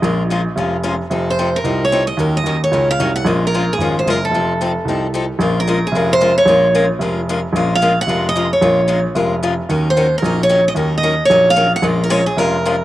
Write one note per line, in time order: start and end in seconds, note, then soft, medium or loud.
0.00 0.46 A#1 medium
0.00 0.21 F3 medium
0.00 0.22 G#3 medium
0.00 0.22 C#4 medium
0.00 0.80 D#5 medium
0.04 0.22 F4 medium
0.04 0.22 A#4 medium
0.30 0.40 F3 medium
0.30 0.41 G#3 medium
0.30 0.41 C#4 medium
0.30 0.41 F4 medium
0.30 0.41 A#4 medium
0.56 0.99 F1 medium
0.56 0.76 F3 medium
0.56 0.76 G#3 medium
0.56 0.76 C#4 medium
0.56 0.76 F4 medium
0.56 0.76 A#4 medium
0.83 0.94 F3 medium
0.83 0.94 G#3 medium
0.83 0.94 C#4 medium
0.83 0.94 F4 medium
0.83 0.94 A#4 medium
1.10 1.54 F1 medium
1.10 1.29 F3 medium
1.10 1.29 C4 medium
1.10 1.30 D#4 medium
1.10 1.30 A4 medium
1.30 1.57 C5 medium
1.39 1.48 F3 medium
1.39 1.48 C4 medium
1.39 1.49 D#4 medium
1.39 1.49 A4 medium
1.56 1.84 A#4 medium
1.64 2.07 C2 medium
1.64 1.83 F3 medium
1.64 1.83 C4 medium
1.64 1.83 D#4 medium
1.64 1.83 A4 medium
1.85 2.07 C#5 medium
1.92 2.02 F3 medium
1.92 2.02 C4 medium
1.92 2.02 D#4 medium
1.92 2.03 A4 medium
2.07 2.18 D#5 medium
2.17 2.39 D#2 medium
2.17 2.37 D#3 medium
2.17 2.37 F#3 medium
2.17 2.37 C#4 medium
2.17 2.37 D#4 medium
2.17 2.37 A#4 medium
2.37 2.63 D#5 medium
2.44 2.67 D#2 medium
2.44 2.56 D#3 medium
2.44 2.56 F#3 medium
2.44 2.56 C#4 medium
2.44 2.56 D#4 medium
2.44 2.56 A#4 medium
2.64 2.90 C#5 medium
2.71 2.94 C#2 medium
2.71 2.91 D#3 medium
2.71 2.91 F#3 medium
2.71 2.91 C#4 medium
2.71 2.91 D#4 medium
2.71 2.91 A#4 medium
2.91 3.13 F5 medium
2.99 3.22 C2 medium
2.99 3.10 D#3 medium
2.99 3.10 F#3 medium
2.99 3.10 C#4 medium
2.99 3.10 D#4 medium
2.99 3.10 A#4 medium
3.16 3.26 F#5 medium
3.25 3.68 A#1 medium
3.25 3.44 F3 medium
3.25 3.44 G#3 medium
3.25 3.45 C#4 medium
3.25 3.45 F4 medium
3.25 3.45 A#4 medium
3.47 3.73 A#4 medium
3.54 3.64 F3 medium
3.54 3.64 G#3 medium
3.54 3.64 C#4 medium
3.54 3.64 F4 medium
3.54 3.64 A#4 medium
3.73 3.94 G#4 medium
3.78 4.02 G#1 medium
3.78 3.98 F3 medium
3.78 3.99 G#3 medium
3.78 3.99 C#4 medium
3.78 3.99 F4 medium
3.78 3.99 A#4 medium
3.99 4.10 C5 medium
4.06 4.29 F#1 medium
4.06 4.17 F3 medium
4.06 4.17 G#3 medium
4.06 4.17 C#4 medium
4.06 4.17 F4 medium
4.06 4.17 A#4 medium
4.10 4.23 A#4 medium
4.25 5.11 A4 medium
4.31 4.75 F1 medium
4.31 4.52 F3 medium
4.31 4.52 C4 medium
4.31 4.52 D#4 medium
4.31 4.52 A4 medium
4.61 4.71 F3 medium
4.61 4.71 C4 medium
4.61 4.71 D#4 medium
4.61 4.71 A4 medium
4.85 5.29 C2 medium
4.85 5.06 F3 soft
4.85 5.06 C4 medium
4.85 5.06 D#4 medium
4.89 5.06 A4 medium
5.14 5.24 F3 medium
5.14 5.24 C4 medium
5.14 5.25 D#4 medium
5.14 5.25 A4 medium
5.39 5.82 A#1 medium
5.39 5.59 F3 medium
5.39 5.59 G#3 medium
5.39 5.59 C#4 medium
5.39 5.59 F4 medium
5.39 5.59 A#4 medium
5.60 5.87 A#4 medium
5.67 5.78 F3 medium
5.67 5.78 G#3 medium
5.67 5.78 C#4 medium
5.67 5.78 F4 medium
5.67 5.78 A#4 medium
5.87 6.11 G#4 medium
5.92 6.36 F1 medium
5.92 6.13 F3 medium
5.92 6.13 G#3 medium
5.92 6.13 C#4 medium
5.96 6.13 F4 medium
5.96 6.13 A#4 medium
6.13 6.35 C5 loud
6.21 6.31 F3 medium
6.21 6.31 G#3 medium
6.21 6.31 C#4 medium
6.21 6.31 F4 loud
6.21 6.31 A#4 medium
6.38 6.87 C#5 medium
6.46 6.89 A#1 medium
6.46 6.66 F3 medium
6.46 6.66 G#3 medium
6.46 6.66 C#4 medium
6.46 6.67 F4 medium
6.46 6.67 A#4 medium
6.75 6.85 F3 medium
6.75 6.85 G#3 medium
6.75 6.85 C#4 medium
6.75 6.85 F4 medium
6.75 6.85 A#4 medium
6.99 7.43 F1 medium
6.99 7.19 F3 medium
6.99 7.20 G#3 medium
6.99 7.20 C#4 medium
6.99 7.20 F4 medium
6.99 7.20 A#4 medium
7.29 7.39 F3 medium
7.29 7.39 G#3 medium
7.29 7.39 C#4 medium
7.29 7.39 F4 medium
7.29 7.39 A#4 medium
7.53 7.96 A#1 medium
7.53 7.74 F3 medium
7.53 7.74 G#3 medium
7.53 7.74 C#4 medium
7.53 7.74 F4 medium
7.57 7.74 A#4 medium
7.75 8.01 F5 loud
7.82 7.92 F3 medium
7.82 7.92 G#3 medium
7.82 7.92 C#4 medium
7.82 7.92 F4 medium
7.82 7.92 A#4 medium
8.01 8.28 F#5 medium
8.07 8.51 F1 medium
8.07 8.27 F3 medium
8.07 8.27 G#3 medium
8.07 8.27 C#4 medium
8.07 8.27 F4 medium
8.07 8.27 A#4 medium
8.29 8.50 D#5 medium
8.36 8.46 F3 medium
8.36 8.46 G#3 medium
8.36 8.46 C#4 medium
8.36 8.46 F4 medium
8.36 8.46 A#4 medium
8.53 9.02 C#5 medium
8.61 9.05 A#1 medium
8.61 8.80 F3 medium
8.61 8.81 G#3 medium
8.61 8.81 C#4 medium
8.61 8.80 F4 medium
8.61 8.81 A#4 medium
8.88 8.98 F3 medium
8.88 8.99 G#3 medium
8.88 8.99 C#4 medium
8.88 8.99 F4 medium
8.88 8.99 A#4 medium
9.15 9.58 F1 medium
9.15 9.34 F3 medium
9.15 9.34 G#3 medium
9.15 9.34 C#4 medium
9.15 9.34 F4 medium
9.15 9.34 A#4 medium
9.43 9.53 F3 medium
9.43 9.53 G#3 medium
9.43 9.53 C#4 medium
9.43 9.53 F4 medium
9.43 9.53 A#4 medium
9.69 10.12 D#2 medium
9.69 9.88 D#3 medium
9.69 9.88 F#3 medium
9.69 9.88 C#4 medium
9.69 9.88 D#4 medium
9.69 9.88 A#4 medium
9.90 10.16 C5 medium
9.97 10.06 D#3 medium
9.97 10.07 F#3 medium
9.97 10.07 C#4 medium
9.97 10.07 D#4 medium
9.97 10.07 A#4 medium
10.18 10.43 A#4 medium
10.22 10.65 A#1 medium
10.22 10.42 D#3 medium
10.22 10.42 F#3 medium
10.22 10.42 C#4 medium
10.22 10.42 D#4 medium
10.22 10.42 A#4 medium
10.43 10.64 C#5 medium
10.49 10.60 D#3 medium
10.49 10.60 F#3 medium
10.49 10.60 C#4 medium
10.49 10.60 D#4 medium
10.49 10.60 A#4 medium
10.68 10.73 D#5 medium
10.75 11.18 D#2 medium
10.75 10.95 D#3 medium
10.75 10.94 F#3 medium
10.75 10.94 C#4 medium
10.75 10.95 D#4 medium
10.75 10.95 A#4 medium
10.98 11.23 D#5 medium
11.03 11.13 D#3 medium
11.03 11.13 F#3 medium
11.03 11.13 C#4 medium
11.03 11.14 D#4 medium
11.03 11.14 A#4 medium
11.25 11.48 C#5 medium
11.30 11.73 A#1 medium
11.30 11.48 D#3 medium
11.30 11.49 F#3 medium
11.30 11.49 C#4 medium
11.30 11.49 D#4 medium
11.30 11.49 A#4 medium
11.50 11.71 F5 loud
11.56 11.66 D#3 medium
11.56 11.67 F#3 medium
11.56 11.67 C#4 medium
11.56 11.67 D#4 medium
11.56 11.67 A#4 medium
11.76 11.85 F#5 loud
11.82 12.26 A#1 medium
11.82 12.01 F3 medium
11.82 12.02 G#3 medium
11.82 12.02 C#4 medium
11.82 12.02 F4 medium
11.82 12.02 A#4 medium
12.04 12.10 A#4 medium
12.10 12.20 F3 medium
12.10 12.20 G#3 medium
12.10 12.20 C#4 medium
12.10 12.20 F4 medium
12.10 12.21 A#4 medium
12.10 12.26 C#5 medium
12.26 12.38 G#4 medium
12.37 12.80 F1 medium
12.37 12.56 F3 medium
12.37 12.56 G#3 medium
12.37 12.56 C#4 medium
12.37 12.56 F4 medium
12.37 12.84 A#4 medium
12.37 12.57 A#4 medium
12.65 12.75 F3 medium
12.65 12.75 G#3 medium
12.65 12.75 C#4 medium
12.65 12.75 F4 medium
12.65 12.75 A#4 medium